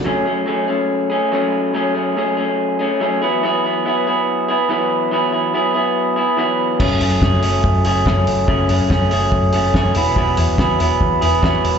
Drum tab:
CC |--------|--------|--------|--------|
HH |--------|--------|--------|--------|
SD |--------|--------|--------|--------|
BD |--------|--------|--------|--------|

CC |x-------|--------|--------|
HH |-o-o-o-o|-o-o-o-o|-o-o-o-o|
SD |--o---o-|--o---o-|--o---o-|
BD |o-o-o-o-|o-o-o-o-|o-o-o-o-|